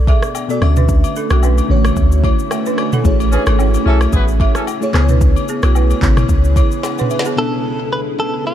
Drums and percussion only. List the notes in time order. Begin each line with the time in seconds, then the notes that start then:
0.07 kick, high agogo
0.23 cross-stick, shaker
0.35 high agogo, low woodblock, shaker
0.50 shaker
0.62 cross-stick, high agogo
0.76 mid tom, shaker
0.89 kick, shaker
1.04 high agogo, shaker
1.16 shaker
1.30 cross-stick, high agogo, shaker
1.43 low woodblock, shaker
1.58 high agogo, shaker
1.84 cross-stick, high agogo, shaker
1.96 kick, shaker
2.12 shaker
2.24 kick, high agogo
2.39 shaker
2.51 cross-stick, high agogo, low woodblock, shaker
2.66 shaker
2.78 cross-stick, high agogo
2.93 mid tom, shaker
3.05 kick, shaker
3.20 high agogo, shaker
3.32 shaker
3.46 cross-stick, high agogo, shaker
3.59 low woodblock, shaker
3.74 high agogo, shaker
4.01 cross-stick, high agogo, shaker
4.13 kick, shaker
4.28 shaker
4.40 kick, high agogo
4.55 cross-stick, shaker
4.67 high agogo, low woodblock, shaker
4.82 shaker
4.94 cross-stick, clap, high agogo
5.09 mid tom, shaker
5.21 kick, shaker
5.36 high agogo, shaker
5.48 shaker
5.63 cross-stick, high agogo, shaker
5.75 low woodblock, shaker
5.90 high agogo, shaker
6.02 kick, clap, shaker
6.17 cross-stick, mid tom, high agogo, shaker
6.29 kick, shaker
6.44 shaker
6.56 kick, high agogo, shaker
6.72 shaker
6.83 snare, high agogo, low woodblock, shaker
6.98 mid tom, shaker
7.10 high agogo, shaker
7.19 snare
7.25 shaker